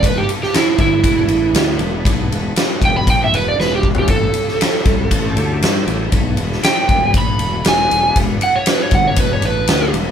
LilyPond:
<<
  \new Staff \with { instrumentName = "Electric slide guitar" } { \time 4/4 \key e \mixolydian \tempo 4 = 118 b'16 g'16 r16 g'16 e'8 e'2 r8 | r4. g''16 b''16 g''16 e''16 b'16 d''16 b'16 g'16 r16 g'16 | a'2. r4 | r4 g''4 b''4 gis''4 |
r8 fis''16 cis''16 b'16 cis''16 fis''16 cis''16 b'16 cis''16 b'4 r8 | }
  \new Staff \with { instrumentName = "Tonewheel organ" } { \time 4/4 \key e \mixolydian <d' e' gis' b'>1~ | <d' e' gis' b'>1 | <cis' e' g' a'>1 | <d' e' gis' b'>1~ |
<d' e' gis' b'>1 | }
  \new Staff \with { instrumentName = "Fingered electric bass" } { \clef bass \time 4/4 \key e \mixolydian e,,8 r4 g,,8 e,,8 a,,8 d,8 e,,8 | b,,8 e,,8 r8 e,,8 ais,,8 e,,8 e,,8 e,,8 | a,,8 r4 c,8 a,,8 d,8 g,8 a,,8 | b,,8 e,,8 r8 e,,8 ais,,8 e,,8 e,,8 e,,8 |
e,,8 r4 g,,8 e,,8 a,,8 d,8 e,,8 | }
  \new DrumStaff \with { instrumentName = "Drums" } \drummode { \time 4/4 <bd cymr>8 cymr16 sn16 <cymr sn>8 <bd cymr>8 <bd cymr>8 cymr8 <cymr sn>8 cymr8 | <bd cymr>8 cymr8 <cymr sn>8 <bd cymr>8 <bd cymr>8 cymr8 sn8 bd16 tomfh16 | <bd cymr>8 cymr16 sn16 <cymr sn>8 <bd cymr>8 <bd cymr>8 cymr8 <cymr sn>8 cymr8 | <bd cymr>8 cymr16 sn16 <cymr sn>8 <bd cymr>8 <bd cymr>8 cymr8 <cymr sn>8 cymr8 |
<bd cymr>8 cymr8 <cymr sn>8 <bd cymr>8 <bd cymr>8 cymr8 <cymr sn>8 cymr8 | }
>>